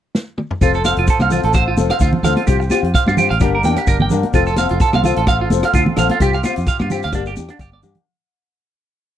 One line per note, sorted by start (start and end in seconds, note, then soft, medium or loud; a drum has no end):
0.15 snare medium
0.38 mid tom medium
0.51 floor tom medium
0.61 0.95 F1 loud
0.61 0.76 F3 medium
0.61 0.76 C4 medium
0.61 0.77 F4 medium
0.61 0.71 F4 medium
0.61 3.38 F4 medium
0.61 2.46 A4 medium
0.61 0.77 A4 medium
0.61 3.38 C5 medium
0.61 kick medium
0.61 closed hi-hat soft
0.61 shekere medium
0.74 0.82 A4 medium
0.74 shekere soft
0.85 1.01 C4 soft
0.85 1.00 A4 medium
0.85 0.94 F5 medium
0.85 cross-stick medium
0.85 closed hi-hat soft
0.85 high conga soft
0.85 low agogo medium
0.85 shekere medium
0.97 1.07 F1 medium
0.97 1.05 F4 medium
0.97 closed hi-hat soft
1.07 1.18 A4 medium
1.07 kick medium
1.07 closed hi-hat medium
1.07 shekere medium
1.19 1.42 C2 medium
1.19 1.29 F5 medium
1.19 cross-stick medium
1.19 high conga medium
1.19 low agogo medium
1.30 1.47 C4 soft
1.30 1.40 F4 medium
1.30 1.47 F4 soft
1.30 1.46 A4 medium
1.30 closed hi-hat soft
1.30 low conga medium
1.30 shekere medium
1.43 1.76 A1 medium
1.43 1.52 A4 medium
1.43 closed hi-hat medium
1.53 1.63 C5 medium
1.53 kick medium
1.53 cross-stick medium
1.53 closed hi-hat medium
1.53 low agogo medium
1.53 shekere medium
1.68 1.75 F4 medium
1.77 1.90 F1 medium
1.77 1.94 C4 soft
1.77 1.93 F4 medium
1.77 1.92 A4 medium
1.77 closed hi-hat medium
1.77 high conga medium
1.77 shekere medium
1.90 1.98 F5 medium
1.90 cross-stick medium
1.90 closed hi-hat medium
1.90 low agogo medium
2.00 2.13 D2 medium
2.00 2.10 F4 medium
2.00 kick medium
2.00 closed hi-hat medium
2.00 shekere medium
2.13 high conga medium
2.13 low conga medium
2.23 2.36 D2 medium
2.23 2.40 C4 medium
2.23 2.40 F4 medium
2.23 2.39 A4 medium
2.23 2.33 F5 medium
2.23 cross-stick medium
2.23 closed hi-hat medium
2.23 low conga medium
2.23 low agogo medium
2.23 shekere medium
2.37 2.44 F4 medium
2.37 closed hi-hat soft
2.37 high conga medium
2.47 2.70 C2 medium
2.47 2.62 F3 medium
2.47 2.63 F4 medium
2.47 2.56 G4 medium
2.47 4.32 G4 medium
2.47 2.63 G4 medium
2.47 muted steel-string acoustic guitar stroke medium
2.47 kick medium
2.47 closed hi-hat soft
2.47 shekere medium
2.60 muted clean electric guitar stroke medium
2.60 shekere soft
2.70 2.87 C4 soft
2.70 2.80 F4 medium
2.70 2.86 F4 soft
2.70 2.85 G4 medium
2.70 cross-stick medium
2.70 closed hi-hat soft
2.70 high conga medium
2.70 low agogo medium
2.70 shekere medium
2.83 2.93 F2 medium
2.83 closed hi-hat soft
2.94 3.03 F5 medium
2.94 kick medium
2.94 closed hi-hat medium
2.94 shekere loud
3.07 3.29 G2 medium
3.07 3.15 F4 medium
3.07 cross-stick medium
3.07 high conga medium
3.07 low agogo medium
3.17 3.33 C4 soft
3.17 3.33 F4 soft
3.17 3.32 G4 medium
3.17 3.26 G4 medium
3.17 closed hi-hat soft
3.17 low conga medium
3.17 shekere medium
3.30 3.40 A1 medium
3.30 3.37 F5 medium
3.30 closed hi-hat medium
3.40 3.63 G1 loud
3.40 3.55 G3 medium
3.40 3.55 A#3 medium
3.40 3.56 D4 loud
3.40 4.33 D4 medium
3.40 3.50 G4 medium
3.40 4.33 A#4 medium
3.40 3.56 A#4 medium
3.40 kick medium
3.40 cross-stick medium
3.40 closed hi-hat soft
3.40 low agogo medium
3.40 shekere medium
3.55 3.61 A#4 medium
3.64 3.77 E2 medium
3.64 3.80 A#3 medium
3.64 3.80 D4 medium
3.64 3.79 A#4 medium
3.64 3.73 G5 medium
3.64 closed hi-hat soft
3.64 high conga medium
3.64 shekere medium
3.76 3.85 G4 medium
3.76 cross-stick medium
3.76 closed hi-hat medium
3.76 low agogo medium
3.87 4.09 G1 loud
3.87 3.96 A#4 medium
3.87 kick loud
3.87 closed hi-hat soft
3.87 shekere medium
4.00 4.08 G5 medium
4.00 high conga medium
4.00 low conga medium
4.10 4.23 G2 medium
4.10 4.27 A#3 soft
4.10 4.26 D4 medium
4.10 4.26 A#4 medium
4.10 closed hi-hat soft
4.10 low conga medium
4.10 low agogo medium
4.10 shekere medium
4.23 closed hi-hat soft
4.23 high conga medium
4.33 4.68 F1 loud
4.33 4.48 F3 medium
4.33 4.49 C4 medium
4.33 7.11 C4 medium
4.33 4.49 F4 medium
4.33 7.11 F4 medium
4.33 4.43 F4 medium
4.33 4.49 A4 medium
4.33 6.19 A4 medium
4.33 kick medium
4.33 closed hi-hat soft
4.33 shekere medium
4.46 4.54 A4 medium
4.46 shekere soft
4.56 4.73 C4 soft
4.56 4.73 F4 soft
4.56 4.72 A4 medium
4.56 4.66 F5 medium
4.56 cross-stick medium
4.56 closed hi-hat soft
4.56 high conga medium
4.56 low agogo medium
4.56 shekere medium
4.69 4.80 F1 medium
4.69 4.78 F4 medium
4.69 closed hi-hat soft
4.80 4.90 A4 medium
4.80 kick loud
4.80 closed hi-hat medium
4.80 shekere medium
4.93 5.16 C2 medium
4.93 5.02 F5 medium
4.93 cross-stick medium
4.93 high conga medium
4.93 low agogo medium
5.04 5.20 C4 soft
5.04 5.19 F4 medium
5.04 5.13 F4 medium
5.04 5.19 A4 medium
5.04 closed hi-hat soft
5.04 low conga medium
5.04 shekere medium
5.16 5.49 A1 medium
5.16 5.24 A4 medium
5.16 closed hi-hat medium
5.27 5.36 F5 medium
5.27 kick medium
5.27 cross-stick medium
5.27 closed hi-hat soft
5.27 low agogo medium
5.27 shekere medium
5.41 5.48 F4 medium
5.50 5.62 F1 loud
5.50 5.67 C4 soft
5.50 5.66 F4 medium
5.50 5.65 A4 medium
5.50 closed hi-hat soft
5.50 high conga medium
5.50 shekere medium
5.63 5.71 F5 medium
5.63 cross-stick medium
5.63 closed hi-hat medium
5.63 low agogo medium
5.73 5.86 D2 medium
5.73 5.83 F4 medium
5.73 kick loud
5.73 closed hi-hat medium
5.73 shekere medium
5.86 high conga medium
5.86 low conga medium
5.96 6.09 A#1 medium
5.96 6.13 C4 medium
5.96 6.12 A4 medium
5.96 6.07 F5 medium
5.96 cross-stick medium
5.96 closed hi-hat medium
5.96 low conga medium
5.96 low agogo medium
5.96 shekere medium
6.09 6.18 F4 medium
6.09 closed hi-hat medium
6.09 high conga medium
6.20 6.42 C2 medium
6.20 6.35 F3 medium
6.20 6.35 C4 medium
6.20 6.35 F4 medium
6.20 8.04 G4 medium
6.20 6.36 G4 medium
6.20 6.30 G4 loud
6.20 kick medium
6.20 closed hi-hat soft
6.20 shekere medium
6.34 6.41 F5 medium
6.34 shekere soft
6.43 6.60 C4 soft
6.43 6.59 F4 medium
6.43 6.53 F4 medium
6.43 cross-stick medium
6.43 closed hi-hat soft
6.43 high conga medium
6.43 low agogo medium
6.43 shekere medium
6.56 6.67 F2 medium
6.56 closed hi-hat medium
6.56 shekere soft
6.66 6.76 F5 medium
6.66 kick medium
6.66 closed hi-hat medium
6.66 shekere medium
6.79 7.02 G2 medium
6.79 6.88 F4 medium
6.79 cross-stick medium
6.79 high conga medium
6.79 low agogo medium
6.90 7.06 C4 soft
6.90 7.06 F4 soft
6.90 7.05 G4 medium
6.90 7.00 G4 medium
6.90 closed hi-hat soft
6.90 low conga medium
6.90 shekere medium
7.02 7.12 D2 medium
7.02 7.11 F5 medium
7.02 closed hi-hat medium
7.02 shekere soft
7.12 7.35 G1 loud
7.12 7.28 A#3 medium
7.12 8.06 A#3 medium
7.12 8.05 D4 medium
7.12 7.23 D4 medium
7.12 7.29 G4 medium
7.12 muted steel-string acoustic guitar stroke medium
7.12 kick medium
7.12 cross-stick medium
7.12 closed hi-hat medium
7.12 low agogo medium
7.12 shekere medium
7.26 7.34 G4 medium
7.26 shekere soft
7.35 7.49 E2 medium
7.35 7.53 D4 soft
7.35 7.52 G4 medium
7.35 closed hi-hat soft
7.35 high conga medium
7.35 shekere medium
7.48 7.57 D4 medium
7.48 cross-stick medium
7.48 closed hi-hat soft
7.48 low agogo medium
7.59 7.82 G1 medium
7.59 7.69 G4 medium
7.59 kick medium
7.59 closed hi-hat soft
7.59 shekere medium
7.72 7.80 D5 medium
7.72 high conga medium
7.82 7.95 G2 medium
7.82 7.99 D4 soft
7.82 7.98 G4 medium
7.82 closed hi-hat medium
7.82 low conga medium
7.82 low agogo medium
7.82 shekere medium
7.95 closed hi-hat soft
7.95 low conga medium